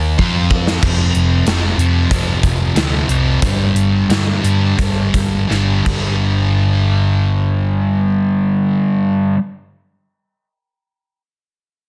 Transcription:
0.00 0.14 D#2 loud
0.00 0.17 D#3 medium
0.00 0.17 A#3 medium
0.00 0.18 D#4 loud
0.18 0.78 F2 medium
0.18 0.81 F3 medium
0.18 0.81 C4 loud
0.18 0.81 F4 loud
0.18 kick medium
0.51 kick medium
0.67 snare medium
0.83 1.09 F1 medium
0.83 1.46 F2 loud
0.83 1.46 C3 medium
0.83 1.46 F3 loud
0.83 kick loud
0.83 crash medium
1.15 1.41 F1 medium
1.15 closed hi-hat medium
1.47 1.73 F1 medium
1.47 1.77 F2 medium
1.47 1.78 C3 medium
1.47 1.78 F3 medium
1.47 snare loud
1.47 closed hi-hat medium
1.78 2.04 F2 medium
1.78 2.10 F2 medium
1.78 2.11 C3 medium
1.78 2.11 F3 medium
1.78 closed hi-hat medium
2.11 2.37 F1 medium
2.11 2.75 F2 medium
2.11 2.75 C3 medium
2.11 2.76 F3 loud
2.11 kick loud
2.11 closed hi-hat medium
2.43 2.70 F1 medium
2.43 kick medium
2.43 closed hi-hat medium
2.75 3.02 D2 medium
2.75 3.08 F2 medium
2.75 3.09 C3 medium
2.75 3.09 F3 medium
2.75 snare loud
2.75 closed hi-hat medium
3.09 3.36 C2 medium
3.09 3.40 F2 medium
3.09 3.40 C3 medium
3.09 3.40 F3 medium
3.09 closed hi-hat medium
3.42 3.70 G1 medium
3.42 4.09 G2 medium
3.42 4.09 D3 medium
3.42 4.09 G3 loud
3.42 kick loud
3.42 closed hi-hat medium
3.74 4.03 G1 medium
3.74 closed hi-hat medium
4.09 4.37 G2 medium
4.09 4.42 G2 medium
4.09 4.42 D3 medium
4.09 4.43 G3 medium
4.09 snare loud
4.09 closed hi-hat medium
4.43 4.77 G2 medium
4.43 4.72 G2 medium
4.43 4.77 D3 medium
4.43 4.77 G3 medium
4.43 closed hi-hat medium
4.78 5.08 G1 medium
4.78 5.47 G2 medium
4.78 5.48 D3 loud
4.78 5.48 G3 loud
4.78 kick loud
4.78 closed hi-hat medium
5.14 5.44 G1 medium
5.14 kick medium
5.14 closed hi-hat medium
5.48 5.80 G1 medium
5.48 5.84 G2 medium
5.48 5.85 D3 medium
5.48 5.86 G3 medium
5.48 snare soft
5.85 9.07 G1 medium
5.85 9.35 G2 medium
5.85 9.37 D3 medium
5.85 9.38 G3 medium
5.85 kick medium
5.85 crash medium

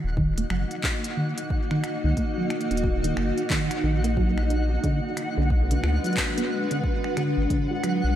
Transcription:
0.00 4.80 A#3 medium
0.00 4.80 D#4 medium
0.00 4.80 F#4 medium
0.00 4.80 D#5 medium
0.00 8.16 F#5 medium
0.04 0.45 D#1 loud
0.17 0.34 D#3 medium
0.17 kick loud
0.38 0.48 A#3 medium
0.38 closed hi-hat medium
0.50 0.65 F#1 medium
0.50 0.70 F#3 medium
0.50 finger snap medium
0.71 closed hi-hat medium
0.84 1.06 D#4 medium
0.84 kick loud
0.84 clap loud
1.04 1.15 A#3 medium
1.04 closed hi-hat medium
1.17 1.34 D#3 medium
1.38 closed hi-hat medium
1.50 kick loud
1.71 1.83 D#3 medium
1.71 finger snap soft
1.84 finger snap medium
1.84 closed hi-hat soft
2.04 2.13 C#2 medium
2.04 2.15 D#3 medium
2.17 2.34 A#3 medium
2.17 kick loud
2.17 closed hi-hat medium
2.38 2.50 F#3 medium
2.50 finger snap medium
2.50 closed hi-hat soft
2.61 closed hi-hat soft
2.71 3.11 D#1 medium
2.71 2.85 D#4 medium
2.71 closed hi-hat medium
2.77 closed hi-hat medium
2.84 3.00 A#3 medium
2.84 kick loud
3.04 3.15 D#3 medium
3.04 closed hi-hat medium
3.17 3.32 F#1 medium
3.17 finger snap medium
3.38 closed hi-hat medium
3.50 3.70 D#3 loud
3.50 kick loud
3.50 clap loud
3.71 finger snap soft
3.71 closed hi-hat medium
3.84 4.78 A#1 medium
3.84 4.00 D#3 medium
4.04 4.15 A#3 medium
4.04 closed hi-hat medium
4.17 4.37 F#3 medium
4.17 kick loud
4.38 finger snap soft
4.50 4.72 D#4 medium
4.50 closed hi-hat medium
4.71 4.81 A#3 medium
4.84 5.00 D3 medium
4.84 8.16 G#3 medium
4.84 8.16 D4 medium
4.84 8.16 F#4 medium
4.84 8.16 B4 medium
4.84 kick loud
4.84 closed hi-hat medium
5.17 finger snap soft
5.17 closed hi-hat medium
5.38 5.78 B1 medium
5.38 5.50 D3 loud
5.50 kick loud
5.71 5.81 D3 medium
5.71 closed hi-hat medium
5.84 5.99 D2 medium
5.84 6.00 F#4 medium
5.84 finger snap medium
6.04 6.16 F#3 medium
6.04 closed hi-hat soft
6.06 closed hi-hat soft
6.13 closed hi-hat soft
6.17 kick loud
6.17 clap loud
6.17 closed hi-hat soft
6.24 closed hi-hat soft
6.28 closed hi-hat soft
6.37 6.52 B3 medium
6.37 closed hi-hat medium
6.50 6.67 G#3 medium
6.71 6.81 D3 medium
6.71 closed hi-hat medium
6.84 kick loud
7.04 finger snap soft
7.17 7.37 D3 loud
7.17 finger snap soft
7.17 closed hi-hat soft
7.38 7.47 G#1 medium
7.50 7.67 D3 medium
7.50 kick loud
7.50 closed hi-hat medium
7.71 7.81 F#4 medium
7.84 8.03 F#3 medium
7.84 finger snap soft
7.84 closed hi-hat medium
8.04 8.16 B1 loud

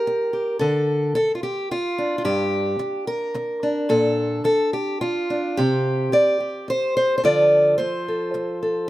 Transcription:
0.00 0.32 G4 medium
0.00 0.59 A#4 medium
0.07 muted steel-string acoustic guitar stroke medium
0.33 0.57 G4 medium
0.59 1.15 D3 medium
0.59 1.14 A4 loud
1.15 1.34 A4 loud
1.15 muted steel-string acoustic guitar stroke medium
1.35 1.42 F4 medium
1.43 1.70 G4 medium
1.71 2.17 F4 medium
1.71 muted steel-string acoustic guitar stroke medium
1.98 3.63 D4 medium
2.18 2.25 F4 medium
2.25 2.78 G2 medium
2.25 3.07 G4 loud
2.79 muted steel-string acoustic guitar stroke medium
3.07 3.89 A#4 loud
3.34 muted steel-string acoustic guitar stroke medium
3.63 5.30 D4 soft
3.89 4.43 A#2 medium
3.89 4.43 A4 loud
4.44 4.73 A4 loud
4.44 muted steel-string acoustic guitar stroke medium
4.73 5.01 G4 medium
5.01 5.57 F4 medium
5.01 muted steel-string acoustic guitar stroke medium
5.30 5.61 D4 medium
5.57 6.11 C3 medium
5.57 6.39 G4 loud
6.12 6.69 D5 loud
6.12 muted steel-string acoustic guitar stroke medium
6.40 7.20 G4 soft
6.68 6.95 C5 loud
6.68 muted steel-string acoustic guitar stroke medium
6.97 7.17 C5 loud
7.18 7.24 C5 medium
7.23 7.78 D3 medium
7.23 8.88 F3 medium
7.23 8.85 F4 medium
7.23 8.08 A4 medium
7.23 7.77 D5 loud
7.78 8.88 C5 loud
7.78 muted steel-string acoustic guitar stroke medium
8.08 8.62 A4 soft
8.34 muted steel-string acoustic guitar stroke medium
8.63 8.89 A4 medium

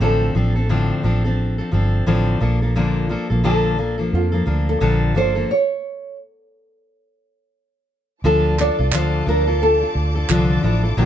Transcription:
0.00 0.29 A1 loud
0.00 0.35 A2 medium
0.00 0.35 D3 medium
0.00 0.33 F3 medium
0.00 0.35 C4 medium
0.00 0.35 D4 medium
0.00 0.36 A4 medium
0.00 0.67 A4 medium
0.35 0.92 A1 medium
0.35 0.56 F3 medium
0.35 0.56 C4 medium
0.35 0.55 D4 medium
0.35 0.54 A4 medium
0.56 0.69 F3 soft
0.56 0.69 C4 soft
0.56 0.69 D4 soft
0.56 0.70 A4 soft
0.69 1.04 A2 medium
0.69 1.04 D3 medium
0.69 1.02 F3 medium
0.69 1.03 C4 medium
0.69 1.04 D4 medium
0.69 1.05 A4 medium
1.03 1.60 A1 medium
1.03 1.24 F3 medium
1.03 1.25 C4 medium
1.03 1.24 D4 medium
1.03 1.23 A4 medium
1.24 1.60 F3 soft
1.24 1.59 C4 medium
1.24 1.58 D4 medium
1.24 1.57 A4 medium
1.58 1.70 F3 soft
1.58 1.72 C4 soft
1.58 1.72 D4 soft
1.58 1.72 A4 soft
1.72 2.01 G1 medium
1.72 2.06 F3 medium
1.72 2.06 C4 medium
1.72 2.07 D4 medium
1.72 2.07 A4 medium
2.06 2.35 A1 medium
2.06 2.41 A2 medium
2.06 2.41 D3 medium
2.06 2.39 F3 medium
2.06 2.41 C4 medium
2.06 2.41 D4 medium
2.06 2.42 A4 medium
2.41 3.15 A#1 medium
2.41 2.62 F3 medium
2.41 2.62 A#3 medium
2.41 2.61 D4 medium
2.41 2.60 A4 medium
2.62 2.75 F3 soft
2.62 2.75 A#3 soft
2.62 2.76 D4 soft
2.62 2.76 A4 soft
2.75 3.10 A#2 medium
2.75 3.10 D3 medium
2.75 3.08 F3 medium
2.75 3.09 A#3 medium
2.75 3.10 D4 medium
2.75 3.47 F4 medium
2.75 3.11 A4 medium
3.09 3.30 F3 medium
3.09 3.30 A#3 medium
3.09 3.30 D4 medium
3.09 3.29 A4 medium
3.30 4.09 A#1 medium
3.30 3.43 F3 soft
3.30 3.44 A#3 soft
3.30 3.44 D4 soft
3.30 3.44 A4 medium
3.44 3.78 A#2 medium
3.44 3.79 D3 medium
3.44 3.76 F3 medium
3.44 3.77 A#3 medium
3.44 3.78 D4 medium
3.44 4.09 A4 medium
3.44 3.79 A4 medium
3.78 3.99 F3 soft
3.78 3.98 A#3 medium
3.78 3.98 D4 medium
3.78 3.97 A4 medium
3.98 4.33 F3 soft
3.98 4.32 A#3 soft
3.98 4.32 D4 medium
3.98 4.31 A4 soft
4.13 4.41 F2 medium
4.13 4.70 F4 medium
4.32 4.44 F3 soft
4.32 4.45 A#3 soft
4.32 4.46 D4 soft
4.32 4.47 A4 soft
4.46 4.75 D2 medium
4.46 4.80 F3 medium
4.46 4.80 A#3 medium
4.46 4.81 D4 medium
4.46 4.81 A4 medium
4.69 5.17 A4 medium
4.80 5.16 A#1 medium
4.80 5.15 A#2 medium
4.80 5.16 D3 medium
4.80 5.14 F3 medium
4.80 5.15 A#3 medium
4.80 5.15 D4 medium
4.80 5.16 A4 medium
5.15 5.44 G1 medium
5.15 5.36 F3 medium
5.15 5.36 A#3 medium
5.15 5.35 D4 medium
5.15 5.34 A4 medium
5.15 5.50 C5 loud
5.35 5.51 F3 soft
5.35 5.50 A#3 soft
5.35 5.50 D4 soft
5.35 5.49 A4 soft
5.51 6.15 C#5 medium
8.24 8.69 D2 loud
8.24 8.59 D3 medium
8.24 10.95 F3 medium
8.24 8.57 F3 medium
8.24 8.58 D4 medium
8.24 8.58 F4 medium
8.24 8.57 A4 medium
8.24 8.59 A4 medium
8.24 10.95 D5 medium
8.24 10.95 A5 medium
8.24 11.05 D6 medium
8.58 8.79 F3 medium
8.58 8.79 D4 medium
8.58 8.78 F4 medium
8.58 8.77 A4 medium
8.58 8.95 D5 loud
8.58 clap medium
8.78 8.91 C2 medium
8.78 8.92 D4 soft
8.78 8.93 F4 soft
8.78 8.93 A4 soft
8.92 9.21 D2 medium
8.92 9.27 D3 medium
8.92 9.25 F3 medium
8.92 9.26 D4 medium
8.92 9.27 F4 medium
8.92 9.27 A4 medium
8.92 9.28 C5 loud
8.92 clap medium
9.26 9.83 D2 medium
9.26 9.47 F3 medium
9.26 9.48 D4 medium
9.26 9.47 F4 medium
9.26 9.46 A4 medium
9.26 9.62 A#4 loud
9.47 9.82 D4 soft
9.47 9.81 F4 soft
9.47 9.80 A4 soft
9.63 10.33 A4 medium
9.81 10.16 D4 soft
9.81 10.15 F4 soft
9.81 10.14 A4 soft
9.95 10.23 D2 medium
10.15 10.29 D4 soft
10.15 10.29 F4 soft
10.15 10.29 A4 medium
10.29 10.58 C2 medium
10.29 10.64 D3 medium
10.29 10.61 F3 medium
10.29 10.62 D4 medium
10.29 10.62 F4 medium
10.29 10.63 F4 medium
10.29 10.64 A4 medium
10.29 clap medium
10.63 10.92 A1 medium
10.63 10.84 F3 medium
10.63 10.84 D4 medium
10.63 10.99 E4 medium
10.63 10.83 F4 medium
10.63 10.82 A4 medium
10.83 10.97 D4 soft
10.83 10.98 F4 soft
10.83 10.97 A4 medium
10.97 11.05 A#1 loud
10.97 11.05 A#2 medium
10.97 11.05 D3 medium
10.97 11.05 F3 medium
10.97 11.05 A#3 medium
10.97 11.05 D4 medium
10.97 11.05 F4 medium
10.97 11.05 G4 medium
10.97 11.05 A#4 medium
10.97 11.05 G5 medium

